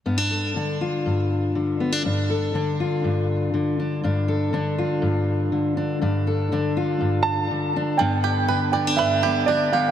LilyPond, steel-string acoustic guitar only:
\new Staff \with { instrumentName = "Steel-string acoustic guitar" } { \time 4/4 \key g \mixolydian \tempo 4 = 121 << { b16 d'16 a'8 d'8 f'2 b16 d'16 | d'8 a'8 d'8 f'2 d'8 | d'8 a'8 d'8 f'2 d'8 | d'8 a'8 d'8 f'2 d'8 |
b4. b16 d'8. b8 g'8 b8 | } \\ { g,4 d4 g,4 d4 | g,4 d4 g,4 d4 | g,4 d4 g,4 d4 | g,4 d4 g,4 d4 |
g,4 d4 g,4 d4 | } >> }